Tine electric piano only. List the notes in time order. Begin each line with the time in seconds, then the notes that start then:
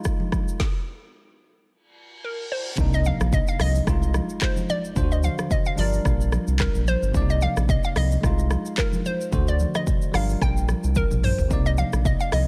Already playing: G#3 D#4 F4
2.76 C3 A#3 D4
2.81 D#4
3.85 G#3 D#4
3.90 F4
4.95 D3 D4 F4 C5
5.03 F#4
5.76 G3 D4 F4
5.81 A#4
7.12 C3 A#3 D4
7.17 D5
7.22 D#4
8.21 G#3 D#4
8.26 F4
9.31 D3 A3 F#4 C5
10.12 G3 D4 F4
10.17 A#4
11.48 C3 A#3 D#4
11.53 D5